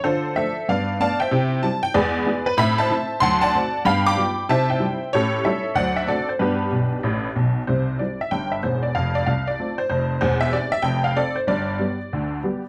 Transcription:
0.04 D3 F4 A4 C5
0.36 F3 A3 D4 A4 C5 E5
0.69 G2 B3 B4 D5 F5
1.00 A3 B3 D4 D5 F5 A5
1.20 C5 E5 G5
1.31 C3 E4
1.63 G3 C4 E4 A5
1.83 G5
1.94 E2 G#3 G#4 B4 D5
2.26 G#3 B3 E4
2.46 B4
2.57 A2 C4 E5 B5
2.78 C5 E5 A5
2.90 A3 C4 E4
3.20 D2 F#3 F#5 A5 C6
3.41 D5 F#5 A5
3.55 A3 C4 F#4
3.85 G2 B3 F5 G5 B5
4.07 G5 B5 D6
4.17 G3 B3 F4
4.49 C3 E4 C5 E5 A5
4.70 C5 E5 G5
4.80 G3 C4 E4
5.13 A2 C#4 G4 A4 C#5
5.45 G3 C#4 E4 A4 C#5 E5
5.75 D2 F#3 C5 D5 F#5
5.96 E5
6.07 A3 C4 D4 F#4 A4 D5
6.29 C5
6.39 G2 B3 D4 G4 B4
6.72 B1 B2
7.03 A1 A2
7.35 B1 B2
7.67 C2 C3 C5
7.99 G3 C4 E4 D5
8.21 E5
8.31 G1 G2 G5
8.52 E5
8.63 E1 E2 C5
8.83 D5
8.95 F1 F2 F5
9.15 D5
9.27 C2 F5
9.47 D5
9.60 A3 C4 F4
9.78 C5
9.90 F1 F2 C5
10.21 E1 E2 C5
10.41 E5
10.52 C4 G4 D5
10.72 E5
10.82 F1 F2 G5
11.04 F5
11.16 C4 A4 D5
11.36 C5
11.47 G1 G2 D5
11.79 G3 B3 G4
12.13 D2 D3
12.43 G3 B3 G4

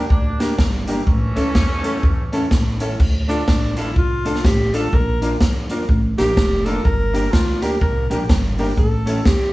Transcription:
Already playing: D4
0.10 D2 G3 A#3 D4, kick
0.39 A#3 D4 G4 A#4, snare, closed hi-hat
0.58 G1, kick, snare
0.87 E3 A3 A#3 C#4 D4 G4 A#4, closed hi-hat
1.07 A1, kick
1.36 C#2 A3 C#4 E4 A4, closed hi-hat
1.55 E2, kick, snare
1.83 A3 C#4 E4 A4, closed hi-hat
2.03 E2, kick
2.32 A3 C#4 E4 A4, closed hi-hat
2.51 A1, kick, snare
2.80 A3 C#4 E4 A4, closed hi-hat
3.00 D2, kick, crash
3.28 A3 D4 F4 A4, closed hi-hat
3.48 A1, kick, snare
3.76 A3 D4 E4 F4 A4, closed hi-hat
3.96 C2 F4, kick
4.25 A3 D4 F4 A4, closed hi-hat
4.35 snare
4.44 A1 G4, kick, snare
4.73 A3 D4 F4 A4, closed hi-hat
4.93 A#1 A#4, kick
5.21 A#3 D4 F4 A#4, closed hi-hat
5.41 F2, kick, snare
5.69 A#3 D4 F4 A#4, closed hi-hat
5.89 A1, kick
6.18 A#1 A#3 D4 F4 G4 A#4, snare, closed hi-hat
6.37 F1, kick, snare
6.65 A#3 D4 F4 A4 A#4, closed hi-hat
6.84 G1 A#4, kick
7.13 A#3 D4 G4 A#4, closed hi-hat
7.32 D2 F4, kick, snare
7.62 A#3 D4 G4 A#4, closed hi-hat
7.81 C2 A#4, kick
8.10 A#1 A#3 D4 G4 A#4, closed hi-hat
8.29 G1, kick, snare
8.58 A#3 D4 G4 A#4, open hi-hat
8.77 A1 A4, kick, hi-hat pedal
9.06 A3 C#4 E4 A4, closed hi-hat
9.25 E2 G4, kick, snare

